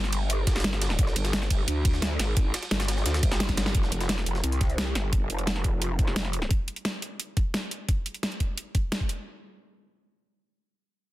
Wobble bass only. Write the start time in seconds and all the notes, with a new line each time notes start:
Already playing: G1
0.64 G1
0.99 G1
1.16 G1
1.51 G1
1.68 D2
2.19 G#1
2.71 G1
3.06 D2
3.23 G1
3.75 F1
3.92 F1
4.26 F1
4.44 C2
4.95 G1
5.30 F1
6.16 F1